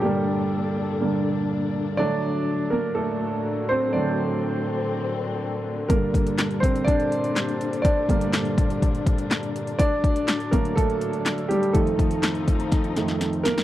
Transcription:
Already playing: grand piano G2 D3 G3 A3 A#3 D4 G4 A4 A#4 D5, string section A#2 D3 D4
0.02 grand piano G2 D3 G3 A#3 G4, string section A4
1.01 grand piano G2 D3 A#3
1.97 string section A2 D3 F#3, grand piano D3 F#3 A3 D4 D5
2.70 grand piano A#3 A#4
2.95 grand piano A3 A4
3.69 grand piano C4 C5
3.93 grand piano D3 F#3 A3 D4 D5, string section C4
5.88 grand piano G2 D3 A#3 A#4, string section A#2 G3 D4, kick, closed hi-hat
6.14 kick, closed hi-hat
6.27 closed hi-hat
6.38 snare, clap, closed hi-hat
6.51 closed hi-hat
6.60 grand piano C4 C5, kick, closed hi-hat
6.76 closed hi-hat
6.84 grand piano D4 D5, kick, closed hi-hat
7.00 closed hi-hat
7.12 closed hi-hat
7.24 closed hi-hat
7.36 snare, clap, closed hi-hat
7.49 closed hi-hat
7.61 closed hi-hat
7.73 closed hi-hat
7.82 grand piano D4 D5, kick, closed hi-hat
8.09 grand piano G2 D3 A#3, kick, closed hi-hat
8.21 closed hi-hat
8.33 snare, clap, closed hi-hat
8.45 closed hi-hat
8.58 kick, closed hi-hat
8.70 closed hi-hat
8.82 kick, closed hi-hat
8.95 closed hi-hat
9.06 kick, closed hi-hat
9.18 closed hi-hat
9.31 snare, clap, closed hi-hat
9.43 closed hi-hat
9.56 closed hi-hat
9.67 closed hi-hat
9.79 string section A2 F#3, grand piano D4 D5, kick, closed hi-hat
10.04 kick, closed hi-hat
10.16 closed hi-hat
10.28 snare, clap, closed hi-hat
10.40 closed hi-hat
10.51 grand piano D3 F#3 A3 A#3 A#4, kick, closed hi-hat
10.65 closed hi-hat
10.76 grand piano A3 A4, kick, closed hi-hat
10.90 closed hi-hat
11.01 closed hi-hat
11.13 closed hi-hat
11.26 snare, clap, closed hi-hat
11.38 closed hi-hat
11.49 grand piano G3 G4, closed hi-hat
11.63 closed hi-hat
11.73 grand piano F2 D#3 A3 A4, string section F3 C4 D#4, kick, closed hi-hat
11.87 closed hi-hat
11.99 kick, closed hi-hat
12.11 closed hi-hat
12.23 snare, clap, closed hi-hat
12.35 closed hi-hat
12.48 kick, closed hi-hat
12.60 closed hi-hat
12.72 kick, snare, closed hi-hat
12.84 closed hi-hat
12.96 grand piano F2 D#3 A3, snare, closed hi-hat
13.08 snare, closed hi-hat
13.21 snare, closed hi-hat
13.33 closed hi-hat
13.43 grand piano A#3 A#4, snare, closed hi-hat
13.58 snare, closed hi-hat

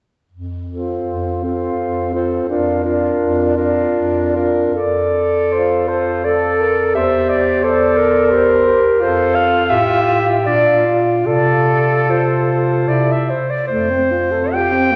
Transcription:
0.32 bass clarinet F2
0.70 tenor saxophone C4, alto saxophone F4, clarinet A4
1.07 bass clarinet F2
1.44 tenor saxophone C4, alto saxophone F4, clarinet A4
1.79 bass clarinet F2
2.13 tenor saxophone C4, alto saxophone F4, clarinet A4
2.49 bass clarinet F2, tenor saxophone D4, alto saxophone F4, clarinet A#4
2.84 tenor saxophone D4, alto saxophone F4, clarinet A#4
3.20 bass clarinet F2
3.56 tenor saxophone D4, alto saxophone F4, clarinet A#4
3.95 bass clarinet F2
4.35 tenor saxophone D4, alto saxophone F4, clarinet A#4
4.75 bass clarinet F2, clarinet A4, alto saxophone D5
5.51 tenor saxophone F4, alto saxophone C5
5.88 alto saxophone A4, clarinet C5
6.24 tenor saxophone A4, alto saxophone A4, clarinet D5
6.61 alto saxophone A#4
6.95 bass clarinet E2, tenor saxophone G4, alto saxophone C5, clarinet E5
7.30 clarinet D5
7.64 tenor saxophone A4, clarinet C5, alto saxophone D5
7.97 clarinet A#4
8.30 tenor saxophone G4, alto saxophone C5
8.66 tenor saxophone G4
8.99 bass clarinet F2, tenor saxophone F4, alto saxophone A4, clarinet C5
9.35 clarinet F5
9.70 bass clarinet A2, alto saxophone G4, clarinet E5
10.46 bass clarinet A#2, tenor saxophone D4, alto saxophone F4, clarinet D5
10.86 tenor saxophone F4
11.26 bass clarinet C3, alto saxophone F4, tenor saxophone A4, clarinet D5
12.09 alto saxophone F4, clarinet C5
12.88 bass clarinet C3, alto saxophone E4, clarinet D5
13.12 clarinet E5
13.30 clarinet C5
13.50 clarinet D5
13.67 bass clarinet F2, alto saxophone A3, clarinet C5
13.90 alto saxophone C4
14.11 alto saxophone F4
14.32 alto saxophone A4
14.53 alto saxophone F4, tenor saxophone G4, clarinet G5
14.72 alto saxophone C4
14.91 alto saxophone A3, tenor saxophone F4

